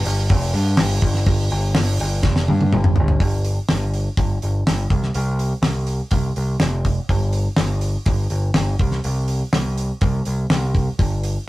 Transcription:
0.05 G1, open hi-hat
0.29 F1, kick, open hi-hat
0.53 G2, open hi-hat
0.77 G1, snare, open hi-hat
1.01 G1, kick, open hi-hat
1.14 snare
1.26 G1, kick, open hi-hat
1.50 G1, open hi-hat
1.75 G1, snare, open hi-hat
1.99 G1, open hi-hat
2.23 F1, kick, snare
2.36 snare
2.48 G2, high tom
2.61 high tom
2.73 G1, mid tom
2.84 mid tom
2.96 G1, floor tom
3.08 floor tom
3.20 G1, kick, open hi-hat
3.45 open hi-hat
3.69 G1, snare, open hi-hat
3.94 open hi-hat
4.17 G1, kick, open hi-hat
4.42 G1, open hi-hat
4.67 G1, snare, open hi-hat
4.90 C2, kick, open hi-hat
5.03 snare
5.14 C2, open hi-hat
5.39 open hi-hat
5.62 C2, snare, open hi-hat
5.87 open hi-hat
6.11 C2, kick, open hi-hat
6.36 C2, open hi-hat
6.60 F1, snare, open hi-hat
6.85 kick, open hi-hat
7.09 G1, kick, open hi-hat
7.33 open hi-hat
7.57 G1, snare, open hi-hat
7.81 open hi-hat
8.06 G1, kick, open hi-hat
8.30 G1, open hi-hat
8.54 G1, snare, open hi-hat
8.79 C2, kick, open hi-hat
8.91 snare
9.04 C2, open hi-hat
9.28 open hi-hat
9.53 C2, snare, open hi-hat
9.78 open hi-hat
10.01 C2, kick, open hi-hat
10.25 C2, open hi-hat
10.50 C2, snare, open hi-hat
10.75 kick, open hi-hat
10.99 G1, kick, open hi-hat
11.24 open hi-hat

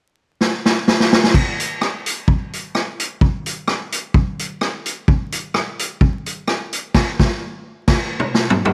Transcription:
0.41 snare
0.66 snare
0.88 snare
1.00 snare
1.12 snare
1.24 snare
1.34 kick, crash
1.60 closed hi-hat
1.81 cross-stick
2.06 closed hi-hat
2.28 kick
2.53 closed hi-hat
2.75 cross-stick
3.00 closed hi-hat
3.21 kick
3.46 closed hi-hat
3.67 cross-stick
3.92 closed hi-hat
4.14 kick
4.39 closed hi-hat
4.61 cross-stick
4.86 closed hi-hat
5.08 kick
5.32 closed hi-hat
5.54 cross-stick
5.79 closed hi-hat
6.01 kick
6.26 closed hi-hat
6.48 cross-stick
6.73 closed hi-hat
6.94 kick, snare, crash
7.19 kick, snare
7.88 kick, snare, crash
8.20 mid tom
8.34 snare
8.50 floor tom
8.65 floor tom

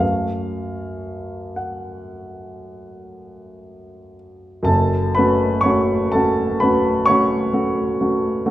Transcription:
Already playing: F#2
0.00 A3 C#4 A4 F5
1.56 F#5
4.63 F#1 F#2 A4 A5
5.15 A3 C#4 B4 B5
5.19 F#4
5.61 C#5 C#6
5.65 A3 C#4 F#4
6.12 A3 C#4 F#4 A4 A5
6.60 A3 C#4 B4 B5
6.64 F#4
7.06 A3 F#4 C#5 C#6
7.10 C#4
7.53 A3 C#4 F#4
8.01 A3 C#4 F#4
8.46 A3 C#4 F#4

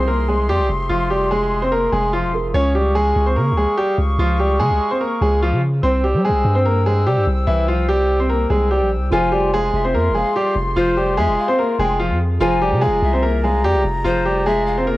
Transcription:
Already playing: C2 F3 F4 G#4 C5 E5 C6
0.07 A#3 A#4
0.28 G#3 G#4
0.49 F2 G3 G4
0.59 C2
0.69 F1
0.89 F1 F3 F4
1.10 G3 G4
1.31 G#3 G#4
1.62 C4 C5
1.72 A#3 A#4
1.92 F1 G#3 G#4
2.13 F3 F4
2.23 E1
2.33 F3 F4 G#4 A#4
2.39 F1
2.54 C#2 C#4 G#4 C#5 F5 C#6
2.75 G3 G4
2.95 G#3 G#4
3.16 C#2
3.26 C4 C5
3.36 C#3 A#3 A#4
3.52 C#2
3.57 G#3 G#4
3.77 G3 G4
3.98 C#2
4.19 C#2 F3 F4
4.39 G3 G4
4.60 C#3 G#3 G#4
4.70 C#2
4.91 C4 C5
5.01 A#3 A#4
5.21 C#2 G#3 G#4
5.43 F3 F4
5.52 C#3
5.83 C2 C4 C5 G5 E6
6.04 G3 G4
6.14 G3
6.25 G#3 G#4
6.29 C2
6.45 G2
6.55 C4 C5
6.65 A#3 A#4
6.86 G#3 G#4
7.06 C3 G3 G4
7.17 G2
7.27 C2
7.47 C2 E3 E4
7.68 F3 F4
7.89 G3 G4
8.20 C4 C5
8.29 A#3 A#4
8.50 C2 G#3 G#4
8.71 G3 G4
8.81 A#1
8.96 C2
9.10 F1 F3 F4 G#4 C5 G#5 C6
9.32 G3 G4
9.53 G#3 G#4 F5
9.73 F1 E5
9.84 C4 C5
9.94 F2 A#3 A#4
10.09 F1
10.15 G#3 G#4 F5
10.36 G3 G4
10.56 F1
10.76 F1 F3 F4 C5
10.97 G3 G4
11.17 F2 G#3 G#4 E5
11.27 F1
11.38 F5
11.48 C4 C5
11.59 A#3 A#4
11.79 F1 G#3 G#4 G5
11.99 F3 F4
12.10 F2
12.39 F1 F3 F4 G#4 C5 G#5 A#5
12.62 G3 G4
12.71 C3
12.81 G#3 G#4 F5
12.87 F1
13.02 C2 E5
13.13 C4 C5
13.23 A#3 A#4
13.43 G#3 G#4 F5
13.64 F2 G3 G4
13.74 C2
13.84 F1
14.04 F1 F3 F4 C5
14.26 G3 G4
14.46 G#3 G#4 E5
14.66 F5
14.78 C4 C5
14.87 A#3 A#4

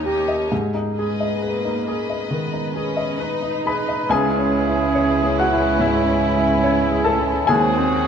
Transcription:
Already playing: D#2 D#4
0.05 A#3 G4 C#5 D#5
0.28 D#5
0.50 G#2 G#4
0.74 D#4
0.95 G#3 G#4 B4 D#5
1.20 D#5
1.39 A#3 B4
1.65 D#4
1.87 G#4 B4 D#5
2.10 D#5
2.30 D#3 B3
2.53 D#4
2.74 C#4 G#4 B4 D#5
2.97 D#5
3.19 D#4 B4
3.42 D#4
3.65 G#4 B4 D#5 B5
3.88 D#5
4.09 C#2 C#3 E3 G#3 C#4 E4 G#4 C#5 G#5
4.38 C#4
4.67 E4
4.95 C#5
5.23 G#4
5.38 F#4 F#5
5.52 E4
5.79 G#2 E4 E5
6.07 C#4
6.35 E4
6.64 C#5
6.92 G#4
7.04 A4 A5
7.19 E4
7.47 D#2 D#3 F#3 C4 F#4 G#4 C5 G#5
7.77 C4

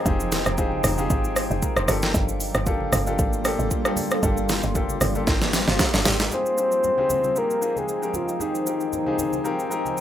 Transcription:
Already playing: F3 G#3 C4 D#4 F4 G4 G#4 A#4 G5
0.05 F1 C4 D#4 F4 G4 G#4, kick, low conga, shaker
0.20 shaker
0.32 snare, open hi-hat, shaker
0.46 F1, cross-stick, shaker
0.57 C4 D#4 F4 G4 G#4, kick, low conga, shaker
0.72 high conga
0.84 F1, cross-stick, open hi-hat, high conga, low conga, shaker
0.98 C4 D#4 F4 G4 G#4, high conga, shaker
1.10 G#1, kick, shaker
1.24 shaker
1.36 G4 C5, cross-stick, open hi-hat, shaker
1.50 F1 D#4 G#4, high conga, shaker
1.62 F4 A#4, kick, shaker
1.76 F1 G4 C5, cross-stick, shaker
1.88 G1 G3 A#3 D4 F4 G4 A4, cross-stick, open hi-hat, high conga, low conga, shaker
2.02 snare, shaker
2.14 G1, kick, low conga, shaker
2.29 shaker
2.40 open hi-hat, shaker
2.54 G1, cross-stick, shaker
2.66 A#3 D4 F4 G4 A4, kick, low conga, shaker
2.80 high conga
2.92 G1, cross-stick, open hi-hat, high conga, low conga, shaker
3.06 A#3 D4 F4 G4 A4, high conga, shaker
3.19 G#1, kick, shaker
3.33 shaker
3.44 A#3 D4 F4 G4 A4, cross-stick, open hi-hat, shaker
3.59 G#1, high conga, shaker
3.71 kick, shaker
3.85 A#3 D4 F4 G4 A4, cross-stick, shaker
3.96 G4, open hi-hat, high conga, low conga, shaker
4.11 cross-stick, shaker
4.23 G1 A#3 D4 F4 G4 A4, kick, low conga, shaker
4.37 shaker
4.49 snare, open hi-hat, shaker
4.63 G1, shaker
4.74 A#3 D4 F4 G4 A4, kick, low conga, shaker
4.89 high conga, shaker
5.01 G1, cross-stick, open hi-hat, high conga, low conga, shaker
5.15 A#3 D4 F4 G4 A4, high conga, shaker
5.27 G#1, kick, snare, shaker
5.42 snare, shaker
5.53 D5 G5, snare, open hi-hat, shaker
5.68 G1 C5 F5, snare, high conga, shaker
5.79 A#4 E5, kick, snare, shaker
5.94 G1 A4 D5, snare, shaker
6.05 G#1 G4 C5, snare, open hi-hat, high conga, low conga, shaker
6.20 F4 A#4, snare, shaker
6.31 F3 G#3 C4 D#4 F4 G4 G#4 C5 G5, low conga, shaker
6.46 shaker
6.58 C4 D#4 F4 G4 G#4, shaker
6.72 shaker
6.84 low conga, shaker
6.98 C4 D#4 F4 G4 G#4, high conga
7.10 high conga, low conga, shaker
7.24 high conga, shaker
7.35 C4 D#4 F4 G4 A#4, shaker
7.50 shaker
7.61 C4 D#4 F4 G4 G#4, shaker
7.76 G#4, high conga, shaker
7.88 shaker
8.02 C4 D#4 F4 G4 A#4, shaker
8.14 F4, high conga, low conga, shaker
8.28 shaker
8.40 C4 D#4 F4 G4 G#4, low conga, shaker
8.55 shaker
8.66 C4 D#4 F4 G4 A#4, shaker
8.80 shaker
8.93 low conga, shaker
9.06 C4 D#4 F4 G4 G#4, high conga
9.19 high conga, low conga, shaker
9.33 high conga, shaker
9.44 C4 D#4 F4 G4 A#4, shaker
9.59 shaker
9.70 C4 D#4 F4 G4 A#4 A#5, shaker
9.85 G#5, high conga, shaker
9.97 G5, shaker

